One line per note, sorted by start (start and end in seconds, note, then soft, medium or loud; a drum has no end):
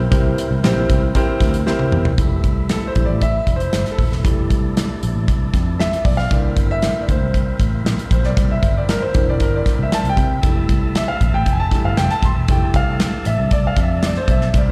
0.00 2.14 E3 medium
0.00 2.14 A#3 medium
0.00 2.14 C4 medium
0.11 0.32 C2 loud
0.11 0.85 C3 medium
0.11 0.50 C4 medium
0.11 0.49 E4 medium
0.11 0.50 G4 medium
0.11 0.50 A#4 medium
0.11 0.50 C5 medium
0.11 kick loud
0.11 closed hi-hat medium
0.38 closed hi-hat medium
0.51 0.61 C2 medium
0.63 0.84 A#1 medium
0.63 1.02 C4 medium
0.63 1.02 E4 medium
0.63 1.02 G4 medium
0.63 1.02 A#4 medium
0.63 1.02 C5 loud
0.63 snare loud
0.63 closed hi-hat loud
0.90 1.10 C2 medium
0.90 kick medium
0.90 closed hi-hat medium
1.15 1.53 C4 loud
1.15 1.54 E4 medium
1.15 1.54 G4 medium
1.15 1.54 A#4 medium
1.15 1.54 C5 loud
1.15 kick medium
1.15 closed hi-hat medium
1.28 muted picked electric bass stroke soft
1.41 1.72 D2 medium
1.41 kick medium
1.41 snare soft
1.41 closed hi-hat medium
1.54 closed hi-hat medium
1.66 2.05 C4 medium
1.66 2.05 E4 medium
1.66 2.05 G4 medium
1.66 2.05 A#4 medium
1.66 2.05 C5 loud
1.66 snare medium
1.79 high tom medium
1.92 2.03 E2 medium
1.92 mid tom medium
2.05 2.15 E1 medium
2.05 floor tom loud
2.18 2.39 F1 loud
2.18 2.92 E3 soft
2.18 6.28 E3 medium
2.18 2.92 G3 soft
2.18 6.28 A3 medium
2.18 2.92 A3 soft
2.18 4.23 E4 medium
2.18 kick loud
2.18 closed hi-hat medium
2.44 2.75 C2 medium
2.44 kick medium
2.44 closed hi-hat medium
2.69 2.88 A4 medium
2.69 snare loud
2.69 closed hi-hat loud
2.87 3.03 C5 medium
2.95 3.06 A#1 medium
2.95 3.19 E3 soft
2.95 3.19 G3 soft
2.95 3.20 A3 soft
2.95 kick medium
2.95 closed hi-hat medium
3.05 3.39 A1 medium
3.05 3.22 D5 medium
3.21 3.57 E5 loud
3.21 kick medium
3.21 closed hi-hat medium
3.47 3.67 F1 loud
3.47 kick medium
3.47 closed hi-hat medium
3.56 3.91 C5 medium
3.60 closed hi-hat medium
3.73 3.84 G1 medium
3.73 snare loud
3.73 closed hi-hat medium
3.86 snare soft
3.86 closed hi-hat soft
3.92 4.39 A4 medium
3.98 4.09 D#1 medium
3.98 kick medium
3.98 open hi-hat soft
4.12 4.22 E1 medium
4.12 snare soft
4.24 4.45 F1 loud
4.24 6.27 E3 soft
4.24 6.27 G3 soft
4.24 6.27 A3 soft
4.24 6.29 D4 medium
4.24 kick loud
4.24 closed hi-hat medium
4.50 4.81 C2 medium
4.50 kick medium
4.50 closed hi-hat medium
4.77 snare loud
4.77 closed hi-hat loud
5.03 5.13 A#1 medium
5.03 closed hi-hat medium
5.16 5.26 A1 medium
5.28 5.49 C2 medium
5.28 kick medium
5.28 closed hi-hat medium
5.54 5.95 F2 loud
5.54 kick medium
5.54 snare soft
5.54 closed hi-hat medium
5.79 6.03 E5 loud
5.79 snare loud
5.79 closed hi-hat medium
5.93 snare soft
5.93 closed hi-hat soft
6.05 6.26 B1 medium
6.05 6.17 D5 loud
6.05 kick loud
6.05 open hi-hat medium
6.17 6.31 F5 loud
6.17 snare soft
6.31 6.52 C2 loud
6.31 7.05 D3 soft
6.31 7.05 E3 soft
6.31 10.40 A#3 medium
6.31 7.05 A#3 medium
6.31 10.40 C4 medium
6.31 12.45 E4 medium
6.31 6.68 D5 medium
6.31 kick loud
6.31 closed hi-hat medium
6.57 6.88 G1 medium
6.57 kick medium
6.57 closed hi-hat medium
6.71 7.00 E5 loud
6.82 snare loud
6.82 closed hi-hat medium
7.01 7.08 D5 medium
7.08 7.19 D2 medium
7.08 7.57 C5 medium
7.08 kick medium
7.08 closed hi-hat medium
7.21 7.52 C2 medium
7.34 kick medium
7.34 closed hi-hat medium
7.60 7.80 A1 medium
7.60 kick medium
7.60 closed hi-hat medium
7.85 7.96 A#1 medium
7.85 snare loud
7.85 closed hi-hat medium
7.99 closed hi-hat soft
8.11 8.22 A#1 medium
8.11 8.24 C5 medium
8.11 kick medium
8.11 closed hi-hat medium
8.23 8.34 B1 medium
8.23 8.51 D5 medium
8.23 snare soft
8.37 8.58 C2 loud
8.37 kick loud
8.37 closed hi-hat medium
8.51 8.75 E5 medium
8.63 8.94 G1 medium
8.63 kick medium
8.63 closed hi-hat medium
8.77 8.90 D5 medium
8.89 9.02 A#4 medium
8.89 snare loud
8.89 closed hi-hat medium
9.02 9.28 C5 medium
9.13 9.25 F1 medium
9.13 9.87 D3 medium
9.13 9.88 E3 soft
9.13 9.88 A#3 medium
9.13 kick medium
9.13 closed hi-hat medium
9.26 9.37 E1 medium
9.26 9.42 D5 medium
9.40 9.61 G1 loud
9.40 9.54 A#4 medium
9.40 kick medium
9.40 closed hi-hat medium
9.56 9.81 D5 medium
9.66 muted picked electric bass stroke soft
9.66 kick medium
9.66 snare soft
9.66 closed hi-hat medium
9.79 9.89 C2 medium
9.79 9.93 E5 medium
9.92 10.06 A5 loud
9.92 muted picked electric bass stroke soft
9.92 snare loud
9.92 closed hi-hat medium
10.04 10.15 C2 medium
10.04 closed hi-hat soft
10.09 10.55 G5 loud
10.17 10.38 C3 medium
10.17 kick loud
10.17 closed hi-hat medium
10.42 10.64 F1 loud
10.42 11.17 E3 soft
10.42 11.18 G3 soft
10.42 14.50 A3 medium
10.42 14.50 A4 medium
10.42 kick loud
10.42 closed hi-hat medium
10.46 11.18 A3 soft
10.69 11.00 C2 medium
10.69 kick medium
10.69 closed hi-hat medium
10.95 11.02 E5 loud
10.95 snare loud
10.95 closed hi-hat loud
11.08 11.34 F5 medium
11.21 11.31 A#1 medium
11.21 kick medium
11.21 closed hi-hat medium
11.33 11.43 A1 medium
11.33 11.54 G5 medium
11.46 11.77 F1 loud
11.46 kick medium
11.46 closed hi-hat medium
11.52 11.59 G#5 medium
11.60 11.86 A5 medium
11.71 11.95 E3 soft
11.71 11.95 G3 soft
11.71 11.95 A3 soft
11.71 kick medium
11.71 snare soft
11.71 closed hi-hat medium
11.84 11.95 G1 medium
11.84 11.98 F5 medium
11.97 12.08 F1 medium
11.97 12.11 G5 loud
11.97 snare loud
11.97 closed hi-hat loud
12.10 12.24 A5 loud
12.10 snare soft
12.10 closed hi-hat soft
12.23 12.33 D#1 medium
12.23 12.48 C6 medium
12.23 kick loud
12.23 closed hi-hat medium
12.36 12.47 E1 medium
12.48 12.70 F1 medium
12.48 13.22 E3 soft
12.48 13.22 G3 soft
12.48 13.23 A3 medium
12.48 14.52 D4 medium
12.48 12.76 G5 medium
12.48 kick loud
12.48 closed hi-hat medium
12.74 13.05 C2 medium
12.74 13.28 F5 loud
12.74 kick medium
12.74 closed hi-hat medium
13.00 snare loud
13.00 closed hi-hat loud
13.25 13.36 A1 medium
13.25 13.50 E5 medium
13.25 closed hi-hat medium
13.39 13.49 C2 medium
13.51 13.72 C2 loud
13.51 13.65 D5 loud
13.51 kick medium
13.51 closed hi-hat medium
13.67 13.79 F5 medium
13.77 14.18 F2 loud
13.77 kick medium
13.77 closed hi-hat medium
13.81 14.05 E5 medium
14.03 14.17 D5 medium
14.03 snare loud
14.03 closed hi-hat loud
14.15 14.30 C5 medium
14.15 snare soft
14.28 14.49 B1 medium
14.28 14.56 E5 medium
14.28 kick medium
14.28 closed hi-hat medium
14.41 snare soft
14.53 14.72 C2 loud
14.53 14.72 A#3 medium
14.53 14.72 C4 medium
14.53 14.72 E4 medium
14.53 kick loud
14.53 closed hi-hat medium
14.57 14.68 D5 medium